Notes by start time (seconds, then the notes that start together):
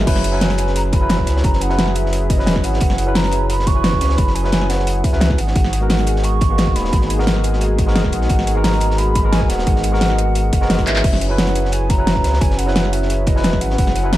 Already playing: E5
0.07 F#1 F#3 C#4 E4 G#4 B4, kick, closed hi-hat, crash
0.16 snare
0.24 closed hi-hat
0.32 F#3 C#4 E4 B4
0.41 G#5, snare, closed hi-hat
0.50 snare, closed hi-hat
0.58 closed hi-hat
0.67 snare
0.76 A#5, closed hi-hat
0.93 B5, kick, closed hi-hat
1.01 F#3 C#4 E4 B4
1.10 snare, closed hi-hat
1.19 kick
1.26 C#2, snare, closed hi-hat
1.37 snare
1.44 F#1 A#5, kick, closed hi-hat
1.53 snare
1.61 F#5, closed hi-hat
1.69 F#3 C#4 E4 B4, snare
1.79 snare, closed hi-hat
1.87 snare
1.95 E5, closed hi-hat
2.06 snare
2.13 closed hi-hat
2.30 D#5, kick, closed hi-hat
2.38 F#3 C#4 E4 B4, snare
2.46 E1, snare, closed hi-hat
2.56 kick, snare
2.64 G#1 F#5, closed hi-hat
2.73 snare
2.81 F#1, kick, closed hi-hat
2.90 snare
2.98 closed hi-hat
3.06 F#3 C#4 E4 B4
3.15 A#5, snare, closed hi-hat
3.24 snare, closed hi-hat
3.31 closed hi-hat
3.50 B5, closed hi-hat
3.59 snare
3.67 C#6, kick, closed hi-hat
3.74 F#3 C#4 E4 B4
3.84 snare, closed hi-hat
3.93 kick
4.01 C#2, snare, closed hi-hat
4.09 snare
4.18 F#1 B5, kick, closed hi-hat
4.27 snare
4.35 G#5, closed hi-hat
4.43 F#3 C#4 E4 B4, snare
4.52 snare, closed hi-hat
4.61 snare
4.70 F#5, snare, closed hi-hat
4.79 snare
4.87 closed hi-hat
5.04 E5, kick, closed hi-hat
5.12 C#2 F#3 C#4 E4 B4, snare
5.21 snare, closed hi-hat
5.30 kick, snare
5.38 G#1 G#3 D#4 F#4 G#4 F#5, closed hi-hat
5.47 snare
5.56 G#1, kick, closed hi-hat
5.64 snare
5.73 closed hi-hat
5.80 G#3 B3 F#4 A#4
5.90 F#5, snare, closed hi-hat
5.98 snare, closed hi-hat
6.07 closed hi-hat
6.16 snare
6.23 C#6, closed hi-hat
6.41 kick, closed hi-hat
6.49 G#3 A#3 B3 F#4
6.58 snare, closed hi-hat
6.67 kick
6.76 D#1 B5, snare, closed hi-hat
6.84 snare
6.93 G#1, kick, closed hi-hat
7.01 snare
7.10 closed hi-hat
7.18 G#3 B3 F#4 A#4, snare
7.27 snare, closed hi-hat
7.36 snare
7.44 closed hi-hat
7.53 snare
7.61 closed hi-hat
7.79 kick, closed hi-hat
7.86 G#3 B3 F#4 A#4, snare
7.95 F#1, snare, closed hi-hat
8.04 kick, snare
8.12 A#1 F#5, closed hi-hat
8.21 snare
8.29 G#1, kick, closed hi-hat
8.39 snare
8.47 closed hi-hat
8.55 G#3 B3 F#4 A#4
8.64 A#5, snare, closed hi-hat
8.73 snare, closed hi-hat
8.81 closed hi-hat
8.90 snare
8.98 B5, closed hi-hat
9.15 kick, closed hi-hat
9.23 G#3 B3 F#4 A#4
9.32 G#5, snare, closed hi-hat
9.41 kick
9.49 D#1 F#5, snare, closed hi-hat
9.58 snare
9.67 G#1, kick, closed hi-hat
9.76 snare
9.84 closed hi-hat
9.92 G#3 B3 F#4 A#4, snare
10.01 snare, closed hi-hat
10.10 snare
10.19 closed hi-hat
10.35 closed hi-hat
10.53 F#1, kick, closed hi-hat
10.61 G#3 B3 F#4 A#4, snare
10.70 snare, closed hi-hat
10.78 kick, snare, closed hi-hat
10.86 G#1 F#3 C#4 E4 B4 E5, clap, closed hi-hat
10.96 clap
11.04 F#1 C#4 E4 G#4 B4, kick, closed hi-hat, crash
11.13 snare
11.21 closed hi-hat
11.29 F#3 C#4 E4 B4
11.38 F#5, snare, closed hi-hat
11.47 snare, closed hi-hat
11.55 closed hi-hat
11.65 snare
11.72 G#5, closed hi-hat
11.90 A#5, kick, closed hi-hat
11.98 F#3 C#4 E4 B4
12.07 snare, closed hi-hat
12.16 kick
12.24 C#2, snare, closed hi-hat
12.33 snare
12.41 F#1 G#5, kick, closed hi-hat
12.50 snare
12.58 F#5, closed hi-hat
12.66 F#3 C#4 E4 B4, snare
12.76 snare, closed hi-hat
12.85 snare
12.93 E5, closed hi-hat
13.02 snare
13.10 closed hi-hat
13.27 D#5, kick, closed hi-hat
13.35 F#3 C#4 E4 B4, snare
13.44 E1, snare, closed hi-hat
13.53 kick, snare
13.61 G#1 F#5, closed hi-hat
13.70 snare
13.78 F#1, kick, closed hi-hat
13.87 snare
13.96 closed hi-hat
14.03 F#3 C#4 E4 B4
14.13 A#5, snare, closed hi-hat